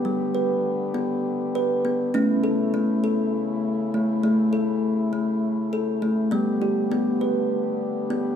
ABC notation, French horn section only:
X:1
M:7/8
L:1/8
Q:1/4=100
K:Glyd
V:1 name="French horn section"
[D,B,G]6- [D,B,G] | [C,A,E]6- [C,A,E]- | [C,A,E]6- [C,A,E] | [D,B,G]6- [D,B,G] |]